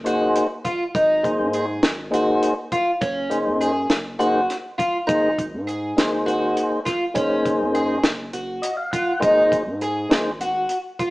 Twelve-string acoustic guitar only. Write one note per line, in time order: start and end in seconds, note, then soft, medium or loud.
0.06 0.42 F#4 medium
0.65 0.83 F4 medium
0.95 1.31 D#4 medium
1.54 1.90 G#4 medium
2.14 2.50 F#4 medium
2.72 2.90 F4 medium
3.01 3.38 C#4 medium
3.61 3.97 G#4 medium
4.19 4.56 F#4 medium
4.78 4.97 F4 medium
5.07 5.44 D#4 medium
5.67 6.04 G#4 medium
6.26 6.63 F#4 medium
6.85 7.04 F4 medium
7.15 7.51 C#4 medium
7.75 8.11 G#4 medium
8.33 8.70 F#4 medium
8.93 9.11 F4 medium
9.23 9.59 D#4 medium
9.82 10.18 G#4 medium
10.41 10.77 F#4 medium
10.99 11.10 F4 medium